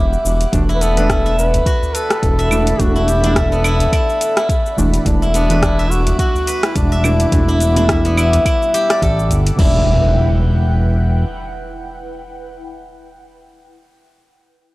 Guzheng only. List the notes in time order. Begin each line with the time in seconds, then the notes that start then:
Already playing: B3 E4 E5
0.69 E4
0.81 B3
0.97 B4
1.10 E4
1.26 E5
1.66 F#4
1.94 B4
2.39 E5
2.96 E4
3.24 E4
3.36 E5
3.52 B3
3.64 E4
3.93 E4
4.37 E4
5.22 E4
5.35 B3
5.51 B4
5.63 E4
5.79 E5
6.19 F#4
6.48 B4
6.92 E5
7.48 E4
7.77 E4
7.89 E5
8.05 B3
8.18 E4
8.46 E4
8.74 G4
8.90 D5
9.03 A4
9.59 E4